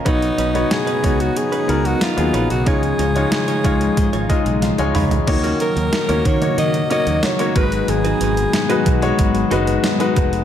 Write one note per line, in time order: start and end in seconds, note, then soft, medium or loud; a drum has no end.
0.00 0.21 F5 medium
0.00 0.21 A#5 medium
0.05 0.30 B1 loud
0.05 1.00 B2 medium
0.05 5.23 C#3 medium
0.05 2.64 F#3 medium
0.05 0.38 B3 medium
0.05 2.64 B3 medium
0.05 0.20 C#4 medium
0.05 2.64 C#4 medium
0.05 0.38 D#4 medium
0.05 5.23 D#4 medium
0.05 0.21 D#4 medium
0.05 0.73 D#4 medium
0.05 0.38 F#4 medium
0.05 0.21 B4 medium
0.05 0.39 C#5 medium
0.05 kick medium
0.05 closed hi-hat medium
0.22 closed hi-hat soft
0.38 0.63 B1 loud
0.38 0.50 C#4 medium
0.38 0.50 D#4 medium
0.38 0.50 B4 medium
0.38 closed hi-hat medium
0.54 0.87 B3 medium
0.54 0.67 C#4 medium
0.54 0.87 D#4 medium
0.54 0.67 D#4 medium
0.54 0.87 F#4 medium
0.54 0.66 B4 medium
0.54 0.87 C#5 medium
0.54 closed hi-hat soft
0.71 1.22 G#4 loud
0.71 snare loud
0.71 closed hi-hat medium
0.87 1.02 C#4 medium
0.87 1.02 D#4 medium
0.87 1.02 B4 medium
0.87 closed hi-hat medium
1.03 1.28 C#2 medium
1.03 1.47 B3 medium
1.03 1.15 C#4 medium
1.03 1.47 D#4 medium
1.03 1.15 D#4 medium
1.03 1.47 F#4 medium
1.03 1.16 B4 medium
1.03 1.47 C#5 medium
1.03 kick medium
1.03 closed hi-hat medium
1.20 1.39 F#4 medium
1.20 closed hi-hat medium
1.36 1.88 G#4 medium
1.36 muted clean electric guitar stroke soft
1.36 closed hi-hat medium
1.52 1.67 C#4 medium
1.52 1.68 D#4 medium
1.52 1.67 B4 medium
1.52 closed hi-hat soft
1.68 1.93 C#2 medium
1.68 2.01 B3 medium
1.68 1.80 C#4 medium
1.68 2.01 D#4 medium
1.68 1.81 D#4 medium
1.68 2.01 F#4 medium
1.68 2.02 A#4 medium
1.68 1.81 B4 medium
1.68 closed hi-hat medium
1.85 2.04 F#4 medium
1.85 closed hi-hat soft
2.01 2.50 F4 medium
2.01 snare loud
2.01 closed hi-hat medium
2.17 2.30 D#2 medium
2.17 2.50 F#3 medium
2.17 2.50 B3 medium
2.17 2.50 D#4 medium
2.17 2.51 G#4 medium
2.17 muted clean electric guitar stroke soft
2.17 closed hi-hat medium
2.33 2.46 A#1 medium
2.33 2.49 C#4 medium
2.33 2.49 D#4 medium
2.33 2.49 B4 medium
2.33 closed hi-hat medium
2.50 2.67 B1 medium
2.50 2.69 F#4 medium
2.50 muted clean electric guitar stroke soft
2.50 closed hi-hat soft
2.66 2.91 C#2 loud
2.66 3.60 C#3 medium
2.66 5.25 F3 medium
2.66 2.99 G#3 medium
2.66 5.25 G#3 medium
2.66 2.81 D#4 medium
2.66 2.99 D#4 medium
2.66 2.99 F4 medium
2.66 2.82 F4 medium
2.66 5.25 F4 medium
2.66 4.63 G#4 loud
2.66 2.99 C#5 medium
2.66 2.82 C#5 medium
2.66 kick loud
2.66 closed hi-hat medium
2.83 closed hi-hat soft
2.99 3.24 C#2 medium
2.99 3.11 D#4 medium
2.99 3.11 F4 medium
2.99 3.11 C#5 medium
2.99 closed hi-hat medium
3.15 3.48 G#3 medium
3.15 3.48 D#4 medium
3.15 3.28 D#4 medium
3.15 3.48 F4 medium
3.15 3.27 F4 medium
3.15 3.27 C#5 medium
3.15 3.48 C#5 medium
3.15 closed hi-hat soft
3.32 snare loud
3.32 closed hi-hat medium
3.48 3.63 D#4 medium
3.48 3.63 F4 medium
3.48 3.63 C#5 medium
3.48 closed hi-hat medium
3.64 3.89 C#2 medium
3.64 4.08 G#3 medium
3.64 3.76 D#4 medium
3.64 4.08 D#4 medium
3.64 4.08 F4 medium
3.64 3.76 F4 medium
3.64 4.08 C#5 medium
3.64 3.77 C#5 medium
3.64 kick medium
3.64 closed hi-hat medium
3.81 closed hi-hat medium
3.97 4.09 G#2 medium
3.97 muted clean electric guitar stroke soft
3.97 kick medium
3.97 closed hi-hat medium
4.13 4.25 G#1 medium
4.13 4.28 D#4 medium
4.13 4.28 F4 medium
4.13 4.28 C#5 medium
4.13 closed hi-hat soft
4.29 4.62 G#3 medium
4.29 4.41 D#4 medium
4.29 4.62 D#4 medium
4.29 4.62 F4 medium
4.29 4.42 F4 medium
4.29 4.42 C#5 medium
4.29 4.63 D#5 medium
4.29 kick medium
4.29 closed hi-hat medium
4.46 4.70 B1 medium
4.46 muted clean electric guitar stroke soft
4.46 closed hi-hat soft
4.62 4.77 F5 medium
4.62 snare medium
4.62 closed hi-hat medium
4.78 4.91 C#2 medium
4.78 5.11 G#3 medium
4.78 5.11 D#4 medium
4.78 5.11 F4 medium
4.78 5.11 C#5 medium
4.78 4.94 G#5 medium
4.78 muted clean electric guitar stroke soft
4.78 closed hi-hat medium
4.95 5.19 C#2 medium
4.95 5.10 D#4 medium
4.95 5.10 F4 medium
4.95 5.10 C#5 medium
4.95 5.25 B5 medium
4.95 mid tom medium
4.95 open hi-hat medium
5.11 closed hi-hat soft
5.11 floor tom medium
5.27 5.52 D#2 loud
5.27 7.54 C#3 medium
5.27 6.21 D#3 medium
5.27 10.44 F#3 medium
5.27 5.81 A#3 medium
5.27 7.54 A#3 medium
5.27 5.82 D#4 medium
5.27 7.54 D#4 medium
5.27 5.82 F#4 medium
5.27 7.54 F#4 medium
5.27 5.82 C#5 medium
5.27 muted clean electric guitar stroke soft
5.27 kick medium
5.27 closed hi-hat medium
5.27 crash medium
5.44 5.59 C#4 medium
5.44 5.59 F#4 medium
5.44 5.59 A#4 medium
5.44 closed hi-hat soft
5.60 5.72 C#4 medium
5.60 5.72 F#4 medium
5.60 6.28 A#4 medium
5.60 5.72 A#4 medium
5.60 closed hi-hat medium
5.76 5.89 D#2 medium
5.76 closed hi-hat soft
5.92 muted clean electric guitar stroke soft
5.92 snare loud
5.92 closed hi-hat medium
6.08 6.21 D#2 medium
6.08 6.30 A#3 medium
6.08 6.24 C#4 medium
6.08 6.31 D#4 medium
6.08 6.31 F#4 medium
6.08 6.24 F#4 medium
6.08 6.24 A#4 medium
6.08 6.31 C#5 medium
6.08 closed hi-hat medium
6.25 6.50 D#3 medium
6.25 6.37 C#4 medium
6.25 6.37 F#4 medium
6.25 6.38 A#4 medium
6.25 6.58 C#5 loud
6.25 kick medium
6.25 closed hi-hat medium
6.41 6.74 A#3 medium
6.41 6.74 D#4 medium
6.41 6.74 F#4 medium
6.41 6.74 C#5 medium
6.41 muted clean electric guitar stroke soft
6.41 closed hi-hat medium
6.58 6.82 D#3 loud
6.58 6.89 D#5 medium
6.58 muted clean electric guitar stroke soft
6.58 closed hi-hat medium
6.74 muted clean electric guitar stroke soft
6.74 closed hi-hat soft
6.90 7.23 A#3 medium
6.90 7.05 C#4 medium
6.90 7.23 D#4 medium
6.90 7.23 F#4 medium
6.90 7.06 F#4 medium
6.90 7.05 A#4 medium
6.90 7.23 C#5 medium
6.90 7.25 D#5 loud
6.90 closed hi-hat medium
7.07 7.19 D#2 medium
7.07 muted clean electric guitar stroke soft
7.07 closed hi-hat medium
7.23 7.56 C#5 medium
7.23 muted clean electric guitar stroke soft
7.23 snare loud
7.23 closed hi-hat medium
7.39 7.55 A#3 medium
7.39 7.52 C#4 medium
7.39 7.54 D#4 medium
7.39 7.54 F#4 medium
7.39 7.51 F#4 medium
7.39 7.51 A#4 medium
7.39 7.56 C#5 medium
7.39 closed hi-hat medium
7.55 7.80 G#1 medium
7.55 8.50 G#2 medium
7.55 10.44 D#3 medium
7.55 8.47 G#3 medium
7.55 10.44 G#3 medium
7.55 10.44 B3 medium
7.55 7.70 D#4 medium
7.55 8.47 D#4 medium
7.55 10.44 F#4 medium
7.55 8.47 F#4 medium
7.55 7.71 F#4 medium
7.55 7.62 A#4 medium
7.55 7.91 B4 medium
7.55 7.71 B4 medium
7.55 kick loud
7.55 closed hi-hat medium
7.63 8.51 B4 medium
7.72 closed hi-hat medium
7.88 8.13 G#1 loud
7.88 9.19 G#4 medium
7.88 muted clean electric guitar stroke soft
7.88 closed hi-hat medium
8.04 8.19 D#4 medium
8.04 8.20 F#4 medium
8.04 8.19 B4 medium
8.04 closed hi-hat soft
8.21 8.45 G#1 medium
8.21 8.32 D#4 medium
8.21 8.33 F#4 medium
8.21 8.33 B4 medium
8.21 closed hi-hat medium
8.37 muted clean electric guitar stroke medium
8.37 closed hi-hat medium
8.53 muted clean electric guitar stroke soft
8.53 snare loud
8.53 closed hi-hat loud
8.69 8.91 G#3 medium
8.69 8.91 D#4 medium
8.69 8.84 D#4 medium
8.69 8.92 F#4 medium
8.69 8.85 F#4 medium
8.69 8.84 B4 medium
8.69 8.92 B4 medium
8.69 closed hi-hat medium
8.86 9.11 B1 medium
8.86 8.98 D#4 medium
8.86 8.98 F#4 medium
8.86 8.98 B4 medium
8.86 kick medium
8.86 closed hi-hat medium
9.02 9.35 G#3 medium
9.02 9.35 D#4 medium
9.02 9.35 F#4 medium
9.02 9.35 C#5 loud
9.02 closed hi-hat medium
9.18 9.43 G#1 medium
9.18 muted clean electric guitar stroke soft
9.18 kick medium
9.18 closed hi-hat medium
9.35 muted clean electric guitar stroke soft
9.35 closed hi-hat soft
9.51 9.76 F#1 medium
9.51 9.84 G#3 medium
9.51 9.66 D#4 medium
9.51 9.84 D#4 medium
9.51 9.84 F#4 medium
9.51 9.66 F#4 medium
9.51 9.84 B4 medium
9.51 9.66 B4 medium
9.51 closed hi-hat medium
9.67 muted clean electric guitar stroke soft
9.67 closed hi-hat soft
9.84 muted clean electric guitar stroke soft
9.84 snare loud
9.84 closed hi-hat medium
10.00 10.32 G#3 medium
10.00 10.33 D#4 medium
10.00 10.12 D#4 soft
10.00 10.33 F#4 medium
10.00 10.12 F#4 medium
10.00 10.12 B4 medium
10.00 10.33 B4 loud
10.00 closed hi-hat medium
10.16 10.41 F1 medium
10.16 10.31 D#4 medium
10.16 10.32 F#4 medium
10.16 10.31 B4 medium
10.16 kick medium
10.16 closed hi-hat medium
10.33 muted clean electric guitar stroke medium
10.33 closed hi-hat soft